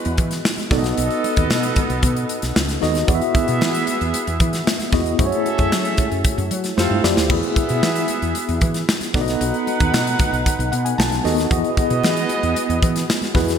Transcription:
Already playing: G#3 B3 E4 F#4 G#4 B4 D#5
0.05 E2, closed hi-hat
0.18 E3, kick, closed hi-hat
0.31 snare, closed hi-hat
0.45 snare, high conga
0.57 snare, closed hi-hat, high conga
0.70 B1 B3 D#4 F#4 A4 D5 D#5, kick, snare, open hi-hat
0.78 D#5
0.84 snare, closed hi-hat
0.97 B1, closed hi-hat
1.10 closed hi-hat
1.24 closed hi-hat, muted conga
1.36 D#2, kick, closed hi-hat
1.50 B2, snare, high conga
1.63 closed hi-hat
1.76 kick, closed hi-hat, muted conga, low conga
1.90 B1, closed hi-hat
2.03 B2, kick, closed hi-hat, muted conga, low conga
2.16 closed hi-hat
2.29 closed hi-hat
2.42 B1, snare, closed hi-hat
2.56 C#2, snare, high conga
2.68 snare, closed hi-hat, high conga
2.81 D#2 B3 D#4 F#4 A4 D#5, snare, open hi-hat
2.95 snare, closed hi-hat
3.07 E2 B3 E4 F#4 G#4 D5 E5, kick, closed hi-hat
3.15 E5
3.22 closed hi-hat
3.35 kick, closed hi-hat, muted conga
3.48 B2, closed hi-hat
3.61 E3, snare, high conga
3.74 closed hi-hat
3.87 closed hi-hat, muted conga
4.01 E2, closed hi-hat
4.14 closed hi-hat, muted conga
4.27 E2, closed hi-hat
4.40 E3, kick, closed hi-hat
4.53 snare, closed hi-hat
4.67 snare, high conga
4.79 snare, closed hi-hat, high conga
4.92 E2 B3 E4 F#4 G#4 D#5, kick, snare, open hi-hat
5.06 closed hi-hat
5.18 F#2 A3 C#4 E4 F#4 G#4 A4 C5 E5, kick, closed hi-hat
5.26 C#5
5.32 closed hi-hat
5.46 closed hi-hat, muted conga
5.58 F#2, kick, closed hi-hat
5.72 F#3, snare, high conga
5.85 closed hi-hat
5.97 kick, closed hi-hat, muted conga, low conga
6.11 F#2, closed hi-hat
6.24 kick, closed hi-hat, muted conga
6.38 F#2, closed hi-hat
6.51 F#3, closed hi-hat
6.64 snare, closed hi-hat
6.76 F2 A3 C4 E4 F4 G4 A4 C5 F5, snare, high conga
6.90 G2, high conga
7.03 F2 A3 E4 F4 G4 D5, snare
7.17 D2, snare
7.29 E2 B3 E4 F#4 G#4 E5, kick, crash
7.43 closed hi-hat
7.56 kick, closed hi-hat, muted conga
7.69 B2, closed hi-hat
7.83 E3, snare, high conga
7.96 closed hi-hat
8.08 closed hi-hat, muted conga
8.22 E2, closed hi-hat
8.35 closed hi-hat, muted conga
8.48 E2, closed hi-hat
8.61 E3, kick, closed hi-hat, muted conga
8.74 snare, closed hi-hat
8.89 snare, high conga
9.01 snare, closed hi-hat, high conga
9.14 B1 B3 D#4 F#4 A4 B4 D5 F#5, kick, snare, open hi-hat
9.21 D#5
9.28 snare, closed hi-hat
9.41 B1, closed hi-hat
9.54 closed hi-hat
9.67 closed hi-hat, muted conga
9.80 D#2, kick, closed hi-hat
9.93 B2, snare, high conga
10.07 closed hi-hat
10.19 kick, closed hi-hat, muted conga, low conga
10.32 B1, closed hi-hat
10.46 kick, closed hi-hat, muted conga, low conga
10.59 B1, closed hi-hat
10.72 B2 F#5, closed hi-hat
10.85 G#5, closed hi-hat
10.98 B1 A5, snare, high conga
11.11 snare, closed hi-hat, high conga
11.24 D#2 B3 D#4 F#4 A4 D#5, snare, open hi-hat
11.38 snare, closed hi-hat
11.51 E2 B3 E4 F#4 G#4 D#5, kick, closed hi-hat
11.64 closed hi-hat
11.77 kick, closed hi-hat, muted conga
11.90 B2, closed hi-hat
12.03 E3, snare, high conga
12.17 closed hi-hat
12.29 closed hi-hat, muted conga
12.43 E2, closed hi-hat
12.56 closed hi-hat, muted conga
12.69 E2, closed hi-hat
12.82 E3, kick, closed hi-hat
12.96 snare, closed hi-hat
13.09 snare, high conga
13.22 snare, closed hi-hat, high conga
13.34 E2 B3 E4 F#4 G#4 B4, kick, snare, open hi-hat
13.48 snare, closed hi-hat

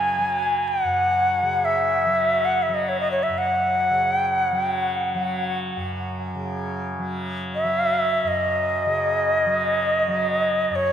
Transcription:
Already playing: F#2 C#3 F#3 G#5
0.19 F#3
0.68 F#5
0.84 F#2
1.42 C#3
1.65 E5
2.06 F#3
2.45 F#5
2.63 E5
2.69 F#3
2.74 D#5
2.89 C#5
3.01 D#5
3.11 C#5
3.23 E5
3.29 F#2
3.38 F#5
3.90 C#3
4.16 G5
4.37 F#5
4.52 F#3
4.60 G5
4.81 F#5
5.15 F#3
5.76 F#2
6.35 C#3
6.99 F#3
7.55 E5
7.64 F#3
8.24 F#2 D#5
8.86 C#3
9.46 F#3
10.08 F#3
10.70 F#2
10.76 C#5

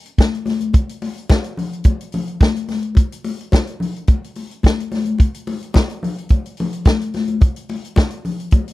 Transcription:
0.06 closed hi-hat
0.18 kick, snare, closed hi-hat, high conga
0.35 closed hi-hat
0.46 snare, open hi-hat, high conga
0.61 closed hi-hat, high conga
0.73 kick, closed hi-hat, muted conga
0.89 closed hi-hat
1.02 open hi-hat, muted conga
1.18 closed hi-hat
1.30 kick, snare, closed hi-hat, high conga
1.44 closed hi-hat
1.57 open hi-hat, low conga
1.73 closed hi-hat
1.84 kick, closed hi-hat, muted conga
2.01 closed hi-hat
2.12 open hi-hat, muted conga, low conga
2.28 closed hi-hat
2.41 kick, snare, closed hi-hat, high conga
2.56 closed hi-hat
2.68 snare, open hi-hat, high conga
2.83 closed hi-hat
2.95 kick, closed hi-hat, muted conga
3.12 closed hi-hat
3.24 open hi-hat, muted conga
3.41 closed hi-hat
3.52 kick, snare, closed hi-hat, high conga
3.67 closed hi-hat
3.80 open hi-hat, low conga
3.96 closed hi-hat
4.07 kick, closed hi-hat, muted conga
4.24 closed hi-hat
4.35 open hi-hat, muted conga
4.51 closed hi-hat
4.63 kick, snare, closed hi-hat, high conga
4.80 closed hi-hat
4.92 snare, open hi-hat, high conga
5.05 closed hi-hat, high conga
5.18 kick, closed hi-hat, muted conga
5.34 closed hi-hat
5.47 open hi-hat, muted conga
5.62 closed hi-hat
5.74 kick, snare, closed hi-hat, high conga
5.89 closed hi-hat
6.03 open hi-hat, low conga
6.18 closed hi-hat
6.29 kick, closed hi-hat, muted conga
6.46 closed hi-hat
6.57 open hi-hat, muted conga, low conga
6.73 closed hi-hat
6.85 kick, snare, closed hi-hat, high conga
7.01 closed hi-hat
7.14 snare, open hi-hat, high conga
7.28 closed hi-hat, high conga
7.41 kick, closed hi-hat, muted conga
7.56 closed hi-hat
7.69 open hi-hat, muted conga
7.85 closed hi-hat
7.96 kick, snare, closed hi-hat, high conga
8.10 closed hi-hat
8.25 open hi-hat, low conga
8.40 closed hi-hat
8.51 kick, closed hi-hat, muted conga
8.68 closed hi-hat

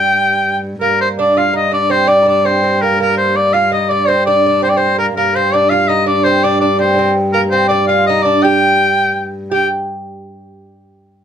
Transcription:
Already playing: G2 G4 G5
0.81 G2 A#3 A#4
1.01 C5
1.19 D4 D5
1.37 F4 F5
1.53 D#4 D#5
1.72 D4 D5
1.90 C4 C5
2.07 D4 D5
2.22 D#4
2.26 D4 D5
2.45 C4 C5
2.64 C4
2.82 A#3 A#4
3.00 A#3 A#4
3.17 C5
3.36 D5
3.53 F4 F5
3.72 D#4 D#5
3.89 D4 D5
4.08 C4 C5
4.26 D4 D5
4.46 D4
4.62 C4 C5
4.69 D5
4.77 C4 C5
4.98 A#3 A#4
5.17 G2 A#3 A#4
5.35 C4 C5
5.53 D4 D5
5.70 F4 F5
5.88 D#4 D#5
6.06 D4 D5
6.24 C4 C5
6.44 D4 D5
6.60 D4 D5
6.79 C4 C5
6.94 D4
6.98 C4
7.33 A#3 A#4
7.51 C4 C5
7.68 D4 D5
7.87 F4 F5
8.07 D#4 D#5
8.23 D4 D5
8.43 G4 G5
9.51 G4 G5

